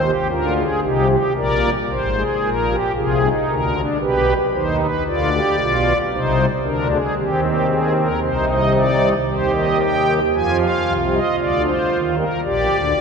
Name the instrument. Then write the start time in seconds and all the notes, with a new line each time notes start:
pipe organ
Already playing: D#2 D#3 C5
0.04 G4
0.29 D2 D3 F4 A#4
0.56 G#4
0.82 C2 C3 D#4 G4
1.09 G4
1.36 A#1 A#2 A#4 D5
1.90 G#1 G#2 C5
2.16 G#4
2.43 A#1 A#2 A#4
2.69 G4
2.95 C2 C3 F4 G#4
3.21 D#4
3.48 D2 D3 A#4
3.74 D4
4.00 B1 B2 G4 B4
4.54 D#2 D#3 D#4 C5
4.80 B4
5.06 D2 D3 F4 D5
5.33 G4
5.60 B1 B2 F4
6.12 C2 C3 D#4 C5
6.65 D2 D3 D4 A#4
6.92 G#4
7.17 D#2 D#3 C4 G4
7.44 G4
7.70 G#4
7.96 A#4
8.22 C2 C3 D#4 C5
8.49 D#5
8.75 D5
9.28 D#2 D#3 G4 C5
9.55 D#5
9.81 G5
10.34 F2 F3 F4 G#5
10.61 F5
10.86 C2 C3
11.13 D#5
11.39 D2 D3 D5
11.65 C5
11.91 D#2 D#3
12.17 A#4
12.44 A#1 A#2 G4 D5
12.69 D2 D3
12.96 C2 C3 F4